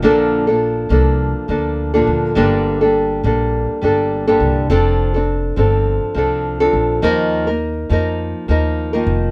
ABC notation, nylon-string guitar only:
X:1
M:4/4
L:1/16
Q:"Swing 16ths" 1/4=103
K:Gm
V:1 name="Nylon-string guitar"
[B,,D,F,B,DA]3 [F,B,DA]3 [F,B,DA]4 [F,B,DA]3 [B,,D,F,B,DA]3 | [G,,D,G,B,DA]3 [G,B,DA]3 [G,B,DA]4 [G,B,DA]3 [G,,D,G,B,DA]3 | [F,CDA]3 [CDA]3 [F,CDA]4 [F,CDA]3 [F,CDA]3 | [E,F,B,EB]3 [B,EB]3 [F,B,EB]4 [F,B,EB]3 [E,F,B,EB]3 |]